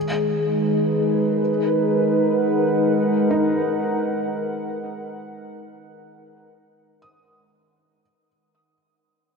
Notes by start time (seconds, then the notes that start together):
Already playing: D#3 G#3 G#4 C#5
0.15 D#4
0.27 B4
0.70 A#4
2.05 F#5
3.31 D#4
7.02 D#6